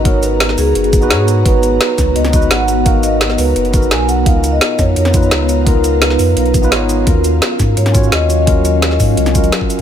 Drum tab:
HH |x-x-x-o-xxx-x-x-|x-x-x-x-xxx-x-x-|x-x-x-o-xxx-x-x-|x-x-x-x-xxx-x-x-|
SH |--x---x---xx--x-|--x---x---xx--x-|--x---x---xx--x-|--x---x---xx--x-|
SD |----oo------o---|----o-o--o--o---|----oo------o---|----o-o--o--o---|
BD |o---------o-----|o-----o---o-----|o---------o-----|o-----o---o-----|

HH |x-x-x-o-xxx-x-x-|x-x-x-x-xxx-x-x-|x-x-x-o-xxxxx-x-|
SH |--x---x---xx--x-|--x---x---xx--x-|--x---x--xxx--x-|
SD |----oo------o---|----o-o--o--o---|----oo---o--o---|
BD |o---------o-----|o-----o---o-----|o-----o---o--o--|